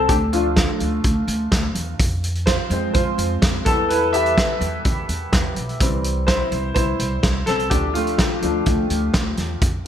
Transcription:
0.00 0.11 E3 soft
0.00 0.11 G3 soft
0.00 0.11 C4 medium
0.00 0.11 E4 medium
0.00 0.11 C5 medium
0.09 0.66 D2 medium
0.09 0.15 D4 medium
0.09 0.14 G4 medium
0.09 kick loud
0.09 closed hi-hat medium
0.32 0.64 F3 soft
0.32 1.25 A3 medium
0.32 0.65 D4 soft
0.32 1.24 F4 medium
0.32 closed hi-hat medium
0.56 kick medium
0.56 snare medium
0.56 closed hi-hat medium
0.80 1.00 D2 medium
0.80 closed hi-hat medium
1.04 1.24 D2 medium
1.04 kick medium
1.04 closed hi-hat medium
1.28 1.47 D2 medium
1.28 closed hi-hat medium
1.52 1.71 D2 medium
1.52 kick medium
1.52 snare medium
1.52 closed hi-hat medium
1.75 1.95 E2 medium
1.75 closed hi-hat medium
2.00 2.56 F2 medium
2.00 kick loud
2.00 closed hi-hat medium
2.24 closed hi-hat medium
2.35 closed hi-hat soft
2.46 2.92 F4 medium
2.46 2.92 C5 medium
2.46 kick medium
2.46 snare medium
2.46 closed hi-hat medium
2.70 2.90 F2 medium
2.70 3.39 F3 soft
2.70 3.39 G#3 soft
2.70 3.39 C4 medium
2.70 closed hi-hat medium
2.94 3.14 F2 medium
2.94 3.63 F4 medium
2.94 3.68 C5 medium
2.94 kick medium
2.94 closed hi-hat medium
3.18 3.38 F2 medium
3.18 closed hi-hat medium
3.42 3.62 F2 medium
3.42 kick medium
3.42 snare medium
3.42 closed hi-hat medium
3.65 4.35 E2 medium
3.65 5.53 E3 soft
3.65 5.53 G3 soft
3.65 5.53 B3 medium
3.65 3.89 E4 medium
3.65 3.90 A4 medium
3.65 kick medium
3.65 closed hi-hat medium
3.89 4.13 E4 medium
3.89 4.14 B4 medium
3.89 closed hi-hat medium
4.13 5.06 G4 medium
4.13 5.05 E5 medium
4.13 closed hi-hat medium
4.26 closed hi-hat soft
4.37 kick medium
4.37 snare medium
4.37 closed hi-hat medium
4.61 4.81 E2 medium
4.61 closed hi-hat medium
4.85 5.05 E2 medium
4.85 kick medium
4.85 closed hi-hat medium
5.09 5.28 E2 medium
5.09 closed hi-hat medium
5.33 5.53 E2 medium
5.33 kick loud
5.33 snare medium
5.33 closed hi-hat medium
5.56 5.76 B1 medium
5.56 closed hi-hat medium
5.69 closed hi-hat soft
5.80 6.37 C2 medium
5.80 6.48 E3 soft
5.80 6.49 G3 soft
5.80 6.49 C4 medium
5.80 kick medium
5.80 closed hi-hat medium
6.04 closed hi-hat medium
6.27 6.73 E4 medium
6.27 6.73 C5 medium
6.27 kick medium
6.27 snare medium
6.27 closed hi-hat medium
6.52 6.72 C2 medium
6.52 closed hi-hat medium
6.74 6.95 C2 medium
6.74 7.44 E4 medium
6.74 7.49 C5 medium
6.74 kick medium
6.74 closed hi-hat medium
6.99 7.19 C2 medium
6.99 closed hi-hat medium
7.23 7.43 C2 medium
7.23 kick medium
7.23 snare medium
7.23 closed hi-hat medium
7.46 7.67 C2 medium
7.46 7.70 C4 medium
7.46 7.71 A4 medium
7.46 snare soft
7.46 closed hi-hat medium
7.59 closed hi-hat soft
7.70 8.28 D2 medium
7.70 8.41 F3 soft
7.70 7.94 A3 soft
7.70 7.94 D4 medium
7.70 7.95 G4 medium
7.70 kick medium
7.70 closed hi-hat medium
7.94 8.41 A3 soft
7.94 8.86 F4 medium
7.94 closed hi-hat medium
8.07 closed hi-hat soft
8.18 kick medium
8.18 snare medium
8.18 closed hi-hat medium
8.42 8.62 D2 medium
8.42 8.64 F3 soft
8.42 8.64 A3 soft
8.42 8.64 D4 soft
8.42 closed hi-hat medium
8.66 8.86 D2 medium
8.66 kick medium
8.66 closed hi-hat medium
8.90 9.10 D2 medium
8.90 closed hi-hat medium
9.14 9.34 D2 medium
9.14 kick medium
9.14 snare medium
9.14 closed hi-hat medium
9.37 9.58 E2 medium
9.37 snare soft
9.37 closed hi-hat medium
9.62 9.87 F2 medium
9.62 kick loud
9.62 closed hi-hat medium

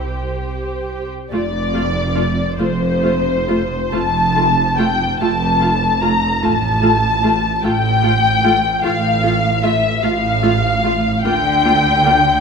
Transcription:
0.00 1.12 C2 medium
0.00 1.08 G4 soft
0.00 1.08 C5 soft
0.00 1.07 G5 soft
1.31 2.42 F1 medium
1.31 2.42 F2 medium
1.31 1.40 A3 soft
1.31 1.40 F4 soft
1.31 2.53 D5 medium
1.74 1.82 A3 soft
1.74 1.82 F4 medium
2.15 2.23 A3 soft
2.15 2.23 F4 soft
2.57 3.77 F1 medium
2.57 3.76 F2 medium
2.57 2.66 A3 soft
2.57 2.67 F4 soft
2.57 3.92 C5 medium
3.03 3.11 A3 soft
3.03 3.11 F4 soft
3.48 3.56 A3 soft
3.48 3.56 F4 soft
3.91 5.05 F1 medium
3.91 5.04 F2 medium
3.91 4.00 A3 medium
3.91 4.00 F4 medium
3.91 4.78 A5 medium
4.36 4.44 A3 soft
4.36 4.44 F4 soft
4.77 4.86 A3 soft
4.77 4.86 F4 soft
4.77 5.19 G5 medium
5.19 6.28 F1 medium
5.19 6.28 F2 medium
5.19 5.29 A3 medium
5.19 5.29 F4 soft
5.19 6.00 A5 medium
5.60 5.68 A3 soft
5.60 5.69 F4 medium
6.01 6.10 A3 soft
6.01 6.09 F4 soft
6.01 6.42 A#5 medium
6.42 7.49 A1 medium
6.42 7.49 A2 medium
6.42 6.50 A3 soft
6.42 6.50 F4 soft
6.42 7.64 A5 medium
6.82 6.90 A3 medium
6.82 6.90 F4 medium
7.23 7.31 A3 medium
7.23 7.31 F4 medium
7.63 8.70 A1 medium
7.63 8.70 A2 medium
7.63 7.71 A3 soft
7.63 7.72 F4 medium
7.63 8.84 G5 medium
8.03 8.11 A3 medium
8.03 8.11 F4 medium
8.44 8.52 A3 medium
8.44 8.52 F4 medium
8.83 9.89 A1 medium
8.83 9.89 A2 medium
8.83 8.91 A3 medium
8.83 8.91 F4 medium
8.83 9.62 F5 medium
9.23 9.31 A3 medium
9.23 9.31 F4 medium
9.62 9.70 A3 medium
9.62 9.70 F4 medium
9.62 10.03 E5 medium
10.03 11.10 A1 medium
10.03 11.09 A2 medium
10.03 10.11 A3 medium
10.03 10.11 F4 medium
10.03 11.24 F5 medium
10.42 10.50 A3 medium
10.42 10.50 F4 medium
10.83 10.91 A3 soft
10.83 10.92 F4 soft
11.23 12.30 D2 medium
11.23 12.30 D3 medium
11.23 11.33 A#3 medium
11.23 11.33 F4 medium
11.23 12.40 G5 loud
11.64 11.73 A#3 medium
11.64 11.72 F4 medium
12.05 12.13 A#3 medium
12.05 12.13 F4 medium

